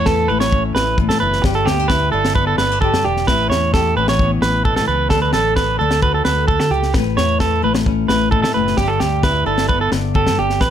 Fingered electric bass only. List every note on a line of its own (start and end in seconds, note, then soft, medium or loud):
0.00 0.27 E2 medium
0.29 0.73 A1 medium
0.75 1.10 A1 medium
1.08 1.20 A2 medium
1.21 1.42 F#1 medium
1.44 1.66 G1 loud
1.66 2.10 D2 medium
2.12 2.56 G1 medium
2.58 2.94 G1 medium
2.92 3.03 G2 medium
3.05 3.26 E1 loud
3.28 3.49 A1 medium
3.50 3.93 E2 medium
3.96 4.39 A1 loud
4.42 4.78 A1 medium
4.76 4.87 A2 medium
4.88 5.09 C#2 medium
5.11 5.32 D2 loud
5.34 5.77 A1 medium
5.80 6.23 D2 medium
6.25 6.59 D2 medium
6.59 6.70 D3 medium
6.70 6.92 C#2 medium
6.94 7.16 A1 loud
7.17 7.60 E2 medium
7.63 8.06 A1 medium
8.09 8.43 A1 medium
8.43 8.54 A2 medium
8.55 8.76 F#1 loud
8.78 8.99 G1 loud
9.01 9.43 D2 medium
9.45 9.89 G1 medium
9.92 10.28 G1 medium
10.27 10.37 G2 medium
10.38 10.59 G1 medium
10.61 10.70 A1 loud